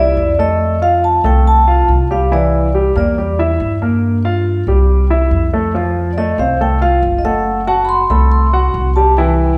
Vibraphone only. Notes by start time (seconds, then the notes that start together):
Already playing: D5
0.40 D#5
0.83 F5
1.04 A5
1.26 G5
1.47 A5
2.12 F5
2.33 D5
2.98 D5
6.13 D5
6.18 D#5
6.39 F5
6.62 G5
6.82 F5
7.19 D#5
7.25 F#5
7.68 A5
7.85 B5
7.89 C6
8.10 B5
8.32 C6
8.96 A5
9.17 G5